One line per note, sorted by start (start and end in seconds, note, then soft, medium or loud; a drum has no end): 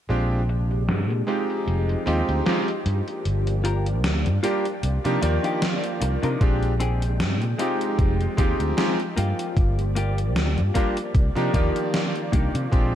0.09 0.90 A#1 medium
0.09 1.27 C3 medium
0.09 0.39 G#3 medium
0.09 2.83 G#3 medium
0.09 0.39 C4 medium
0.09 1.27 D4 medium
0.09 0.40 D4 medium
0.09 0.40 F4 medium
0.09 4.79 G4 medium
0.09 0.40 G4 medium
0.09 closed hi-hat medium
0.31 closed hi-hat soft
0.49 closed hi-hat medium
0.71 closed hi-hat soft
0.88 1.10 G2 medium
0.88 snare loud
0.88 closed hi-hat medium
1.10 1.22 A#2 medium
1.10 closed hi-hat soft
1.27 2.84 F3 medium
1.27 2.02 G#3 medium
1.27 2.02 C4 medium
1.27 2.02 D#4 medium
1.27 2.84 D#4 medium
1.27 2.03 F4 medium
1.27 2.03 G4 medium
1.27 closed hi-hat medium
1.50 closed hi-hat soft
1.67 1.94 F1 medium
1.67 closed hi-hat medium
1.89 closed hi-hat soft
2.06 2.21 D#2 medium
2.06 2.42 G#3 medium
2.06 2.42 C4 medium
2.06 2.42 D#4 medium
2.06 2.42 F4 medium
2.06 2.42 G4 loud
2.06 closed hi-hat medium
2.29 2.40 D2 medium
2.29 closed hi-hat soft
2.46 2.66 G#3 medium
2.46 2.66 C4 medium
2.46 2.66 D#4 medium
2.46 2.66 F4 medium
2.46 2.67 G4 loud
2.46 snare loud
2.46 closed hi-hat medium
2.68 closed hi-hat soft
2.86 3.00 G2 medium
2.86 4.81 F3 medium
2.86 4.81 A#3 medium
2.86 4.81 D4 medium
2.86 closed hi-hat medium
3.08 closed hi-hat soft
3.25 4.04 G1 medium
3.25 closed hi-hat medium
3.47 closed hi-hat soft
3.64 3.86 F4 medium
3.64 3.86 G4 medium
3.64 3.87 A#4 medium
3.64 closed hi-hat medium
3.86 closed hi-hat soft
4.04 4.27 D2 medium
4.04 snare loud
4.04 closed hi-hat medium
4.26 4.38 G2 medium
4.26 closed hi-hat soft
4.43 4.63 G3 medium
4.43 4.63 A#3 medium
4.43 4.64 D4 medium
4.43 4.65 F4 medium
4.43 4.64 F4 medium
4.43 4.65 G4 medium
4.43 4.64 G4 loud
4.43 4.66 A#4 medium
4.43 closed hi-hat medium
4.65 closed hi-hat soft
4.83 4.97 C2 medium
4.83 6.40 D#3 medium
4.83 6.40 A#3 medium
4.83 6.40 F4 medium
4.83 6.40 D5 medium
4.83 closed hi-hat medium
5.04 5.17 C3 medium
5.04 5.18 F3 medium
5.04 5.18 A#3 medium
5.04 5.18 D4 medium
5.04 5.19 D#4 medium
5.04 5.19 G4 loud
5.04 closed hi-hat soft
5.21 5.37 D#2 medium
5.21 6.39 D#3 medium
5.21 6.38 F3 medium
5.21 6.39 A#3 medium
5.21 6.40 G4 medium
5.21 6.39 D5 medium
5.21 muted clean electric guitar stroke medium
5.21 closed hi-hat medium
5.43 5.62 D4 medium
5.43 5.62 D#4 medium
5.43 5.62 F4 medium
5.43 5.63 G4 medium
5.43 closed hi-hat soft
5.62 snare loud
5.62 closed hi-hat medium
5.84 closed hi-hat soft
6.01 6.16 C2 medium
6.01 muted clean electric guitar stroke medium
6.01 closed hi-hat loud
6.22 6.35 C3 loud
6.22 6.41 D4 medium
6.22 6.41 D#4 medium
6.22 6.41 F4 medium
6.22 6.42 A#4 medium
6.22 closed hi-hat soft
6.41 7.21 A#1 loud
6.41 7.58 C3 medium
6.41 6.71 G#3 medium
6.41 9.15 G#3 medium
6.41 6.71 C4 medium
6.41 7.58 D4 medium
6.41 6.71 D4 medium
6.41 6.71 F4 medium
6.41 6.72 G4 medium
6.41 9.15 G5 medium
6.41 kick loud
6.41 closed hi-hat medium
6.63 closed hi-hat soft
6.80 7.02 C4 medium
6.80 7.02 D4 medium
6.80 7.02 G4 medium
6.80 7.03 G#4 medium
6.80 closed hi-hat medium
7.02 closed hi-hat medium
7.20 7.41 G2 medium
7.20 snare loud
7.20 closed hi-hat medium
7.41 7.53 A#2 medium
7.41 closed hi-hat soft
7.58 11.11 F3 medium
7.58 8.24 G#3 medium
7.58 8.34 G#3 medium
7.58 8.34 C4 medium
7.58 9.16 D#4 medium
7.58 8.34 D#4 medium
7.58 8.24 D#4 medium
7.58 8.34 F4 medium
7.58 8.35 G4 medium
7.58 8.25 G4 medium
7.58 closed hi-hat medium
7.81 closed hi-hat soft
7.99 8.26 F1 medium
7.99 kick loud
7.99 closed hi-hat medium
8.21 closed hi-hat soft
8.37 8.53 D#2 medium
8.37 8.73 G#3 medium
8.37 8.60 G#3 medium
8.37 8.73 C4 medium
8.37 8.74 D#4 medium
8.37 8.60 D#4 medium
8.37 8.74 F4 medium
8.37 8.74 G4 loud
8.37 8.61 G4 medium
8.37 kick loud
8.37 closed hi-hat medium
8.60 8.72 D2 medium
8.60 closed hi-hat medium
8.77 8.97 G#3 loud
8.77 8.98 C4 medium
8.77 8.98 D#4 medium
8.77 8.98 F4 medium
8.77 8.98 G4 loud
8.77 snare loud
8.77 closed hi-hat medium
9.00 closed hi-hat soft
9.16 9.32 G2 medium
9.16 9.82 A#3 medium
9.16 12.69 A#3 medium
9.16 9.82 F4 medium
9.16 11.13 G4 medium
9.16 9.83 G4 medium
9.16 12.95 D5 medium
9.16 closed hi-hat medium
9.39 closed hi-hat medium
9.57 10.36 G1 medium
9.57 kick loud
9.57 closed hi-hat medium
9.79 closed hi-hat soft
9.95 10.18 A#3 medium
9.95 10.18 F4 medium
9.95 10.19 G4 medium
9.95 closed hi-hat medium
10.18 closed hi-hat medium
10.36 10.59 D2 medium
10.36 snare loud
10.36 closed hi-hat medium
10.57 10.69 G2 medium
10.57 closed hi-hat soft
10.74 10.95 G3 medium
10.74 10.96 A#3 medium
10.74 10.95 A#3 medium
10.74 10.95 D4 medium
10.74 10.97 F4 medium
10.74 10.95 F4 medium
10.74 10.96 G4 medium
10.74 10.97 A#4 medium
10.74 kick medium
10.74 closed hi-hat medium
10.97 closed hi-hat soft
11.14 11.29 C2 medium
11.14 12.71 D#3 medium
11.14 12.71 F4 medium
11.14 kick loud
11.14 closed hi-hat medium
11.35 11.48 C3 medium
11.35 11.49 F3 medium
11.35 11.50 A#3 medium
11.35 11.50 D4 medium
11.35 11.50 D#4 medium
11.35 11.50 G4 medium
11.35 closed hi-hat soft
11.53 11.68 D#2 medium
11.53 12.71 D#3 medium
11.53 12.70 F3 medium
11.53 11.76 A#3 medium
11.53 12.70 A#3 medium
11.53 11.76 D4 medium
11.53 11.76 D#4 medium
11.53 11.76 F4 medium
11.53 12.71 G4 loud
11.53 12.71 D5 medium
11.53 kick loud
11.53 closed hi-hat medium
11.76 closed hi-hat medium
11.94 snare loud
11.94 closed hi-hat soft
12.16 closed hi-hat soft
12.32 12.47 C2 medium
12.32 12.54 A#3 medium
12.32 12.55 D4 medium
12.32 12.55 D#4 medium
12.32 12.55 G4 medium
12.32 kick medium
12.32 closed hi-hat loud
12.55 12.66 C3 loud
12.55 closed hi-hat medium
12.72 12.95 A#1 medium
12.72 12.95 C3 medium
12.72 12.95 G#3 medium
12.72 12.95 C4 medium
12.72 12.95 D4 medium
12.72 12.95 F4 medium
12.72 12.95 G4 medium
12.72 kick loud
12.72 closed hi-hat medium